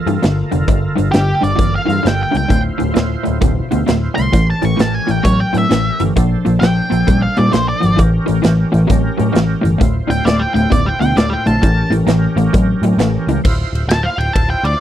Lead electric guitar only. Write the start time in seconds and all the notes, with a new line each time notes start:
1.12 G4
1.43 D5
1.76 F5
2.07 G5
2.23 G5
2.37 G5
4.15 C6
4.50 A5
4.65 C#6
4.81 A5
4.95 G#5
5.11 G5
5.24 C#5
5.40 G5
5.58 E5
6.60 G5
7.23 F5
7.38 D5
7.53 C5
7.69 D5
10.10 G5
10.25 D5
10.40 G5
10.55 G5
10.72 D5
10.86 G5
11.01 G5
11.17 D5
11.30 G5
11.47 A5
13.89 A5
14.03 F5
14.18 G5
14.33 A5
14.50 G5
14.64 D5